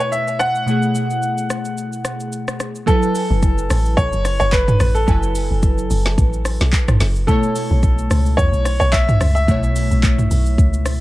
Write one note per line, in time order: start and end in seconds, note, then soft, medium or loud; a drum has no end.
0.00 0.63 B2 medium
0.00 0.64 A3 medium
0.00 0.64 E4 medium
0.00 0.11 C#5 medium
0.00 0.65 C#5 medium
0.00 shaker soft
0.12 0.41 E5 loud
0.12 shaker medium
0.28 shaker medium
0.39 2.56 F#5 loud
0.39 cross-stick medium
0.39 shaker medium
0.55 shaker soft
0.66 2.83 B2 medium
0.66 2.84 A3 medium
0.66 2.84 E4 medium
0.66 shaker medium
0.70 2.85 G#4 medium
0.83 shaker medium
0.95 shaker medium
1.10 shaker medium
1.22 shaker medium
1.38 shaker medium
1.50 cross-stick medium
1.50 shaker medium
1.65 shaker medium
1.78 shaker medium
1.93 shaker medium
2.05 cross-stick medium
2.05 shaker medium
2.20 shaker soft
2.33 shaker medium
2.48 cross-stick medium
2.48 shaker medium
2.60 cross-stick medium
2.60 shaker medium
2.75 shaker soft
2.86 5.03 F#3 medium
2.86 5.04 E4 medium
2.86 4.01 A4 loud
2.86 5.05 A4 medium
2.86 5.04 G#5 medium
2.86 kick loud
2.86 shaker medium
2.91 5.05 B4 medium
3.03 shaker medium
3.15 open hi-hat medium
3.15 shaker loud
3.30 3.68 F#1 loud
3.43 kick loud
3.43 shaker medium
3.58 shaker medium
3.70 3.96 A1 loud
3.70 cross-stick medium
3.70 open hi-hat medium
3.70 shaker loud
3.85 shaker medium
3.97 4.12 B1 loud
3.97 4.38 C#5 loud
3.97 kick loud
3.97 shaker medium
4.13 4.39 F#1 loud
4.13 shaker medium
4.25 cross-stick medium
4.25 open hi-hat medium
4.25 shaker loud
4.40 4.78 F#1 medium
4.40 4.52 C#5 loud
4.40 shaker medium
4.52 4.96 B4 loud
4.52 kick medium
4.52 clap loud
4.52 shaker medium
4.68 mid tom loud
4.68 shaker medium
4.80 5.07 A1 loud
4.80 cross-stick loud
4.80 open hi-hat soft
4.80 shaker medium
4.95 6.96 A4 medium
4.95 shaker soft
5.06 5.48 F#1 loud
5.06 7.23 F#3 medium
5.06 7.24 E4 medium
5.06 7.25 A4 medium
5.06 7.24 G#5 medium
5.06 kick loud
5.06 shaker medium
5.11 7.26 B4 medium
5.23 shaker medium
5.35 open hi-hat medium
5.35 shaker loud
5.51 5.89 F#1 medium
5.63 kick loud
5.63 shaker medium
5.78 shaker medium
5.90 6.17 F#1 loud
5.90 open hi-hat medium
5.90 shaker loud
6.06 snare medium
6.06 shaker medium
6.18 6.59 A1 loud
6.18 kick loud
6.18 shaker medium
6.33 shaker medium
6.45 cross-stick medium
6.45 open hi-hat medium
6.45 shaker loud
6.61 6.72 B1 medium
6.61 snare medium
6.61 shaker medium
6.73 kick loud
6.73 clap loud
6.73 shaker medium
6.88 7.00 A1 medium
6.88 cross-stick loud
6.88 mid tom loud
6.88 shaker medium
7.00 7.27 F#1 loud
7.00 snare medium
7.00 open hi-hat medium
7.00 shaker medium
7.16 shaker medium
7.27 9.44 B2 medium
7.27 9.44 A3 medium
7.27 9.45 E4 medium
7.27 8.34 A4 medium
7.27 kick loud
7.27 shaker medium
7.31 9.46 C#5 medium
7.43 shaker medium
7.56 open hi-hat medium
7.56 shaker loud
7.71 8.09 B1 loud
7.83 kick loud
7.83 shaker medium
7.98 shaker medium
8.10 8.37 C#2 loud
8.10 cross-stick medium
8.10 open hi-hat medium
8.10 shaker loud
8.26 shaker medium
8.37 8.52 E2 loud
8.37 8.78 C#5 loud
8.37 kick loud
8.37 shaker medium
8.53 8.79 B1 medium
8.53 shaker medium
8.65 cross-stick medium
8.65 open hi-hat medium
8.65 shaker loud
8.80 9.19 B1 medium
8.80 8.93 C#5 loud
8.80 shaker medium
8.92 9.32 E5 loud
8.92 kick loud
8.92 clap loud
8.92 shaker medium
9.09 mid tom loud
9.09 shaker medium
9.21 9.47 C#2 loud
9.21 cross-stick loud
9.21 open hi-hat soft
9.21 shaker medium
9.35 11.01 E5 medium
9.35 shaker medium
9.47 9.89 B1 loud
9.47 11.01 B2 medium
9.47 11.01 A3 medium
9.47 11.01 E4 medium
9.47 kick loud
9.47 shaker medium
9.51 11.01 C#5 medium
9.63 shaker medium
9.76 open hi-hat medium
9.76 shaker loud
9.91 10.29 B1 medium
9.91 shaker medium
10.03 kick loud
10.03 clap medium
10.03 shaker medium
10.18 mid tom medium
10.18 shaker medium
10.31 10.57 B1 loud
10.31 open hi-hat medium
10.31 shaker loud
10.46 shaker medium
10.58 10.99 C#2 medium
10.58 kick loud
10.58 shaker medium
10.74 shaker medium
10.86 cross-stick medium
10.86 open hi-hat medium
10.86 shaker loud